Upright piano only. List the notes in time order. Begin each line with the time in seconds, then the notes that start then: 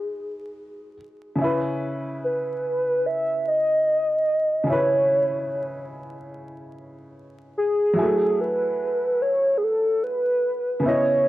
Already playing: G#3 D#4 F#4 B4
1.36 C#3 C#4
1.41 E4 B4
4.64 C#3 C#4
4.69 E4 B4
7.93 F#3 E4
7.99 A3 G#5
10.80 C#3 B3
10.86 E4 D#5